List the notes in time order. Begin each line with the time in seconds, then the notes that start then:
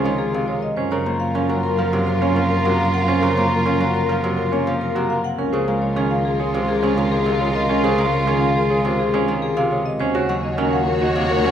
Already playing: C#2 C3 C#3 F3 G#3 F4 A#4
0.05 D#3 D#4 C#5
0.19 G#4
0.33 C3 F4 F5
0.48 G#4 C#5
0.62 D#5
0.77 F#2 C#4 F4 A#4 C5
0.91 C#3 A#4 C#5
1.06 A#3 C5 A#5
1.20 F5
1.34 F3 C#4 A#4
1.49 F#3 F#4 A#5
1.63 A#4
1.77 F3 A#4 F5
1.92 C3 F#4 C#5
2.07 A#4
2.21 A#3 C#4 C#5
2.35 F3 F5
2.50 A#4
2.65 C3 F#4 A#5
2.79 A#4 F5
2.94 F#5
3.08 C#4 C5
3.22 C#3 A#4 C#5
3.37 A#3 C5 A#5
3.51 F5
3.66 F3 C#4 A#4
3.80 F#3 F#4 A#5
3.95 A#4
4.09 F3 A#4 F5
4.23 C3 F#4 C#5
4.38 A#4
4.52 A#3 C#4 C#5
4.67 F3 F5
4.81 A#4
4.95 C3 F#4 A#5
5.09 A#4 F5
5.24 F#5
5.38 C#2 C#4 F4 A#4
5.53 C#3 G#4 C5
5.67 G#3 A#4 F5
5.82 C#5
5.96 D#3 C#4 G#4
6.11 F4 F5
6.25 G#4
6.40 G#4 C#5
6.54 C3 F4 C5
6.68 G#4
6.83 G#3 C#4 C5
6.97 D#3 C#5
7.11 G#4
7.26 C3 F4 F5
7.40 G#4 C#5
7.55 D#5
7.69 C#4 A#4
7.84 C#3 G#4 C5
7.98 G#3 A#4 F5
8.13 C#5
8.27 D#3 C#4 G#4
8.41 F4 F5
8.55 G#4
8.70 G#4 C#5
8.85 C3 F4 C5
8.99 G#4
9.14 G#3 C#4 C5
9.28 D#3
9.42 G#4
9.57 C3 F4 F5
9.71 G#4 C#5
9.86 D#5
10.00 D#2 C#4 F#4 C5 C#5
10.14 C#3 F#4 C#5
10.29 F#3 F#5
10.43 D#5
10.58 D#3 C#4 A#4
10.73 F4 F#5
10.87 A#4
11.01 F#4 D#5
11.16 C3 F4 C#5
11.30 A#4
11.44 F#3 C#4 C#5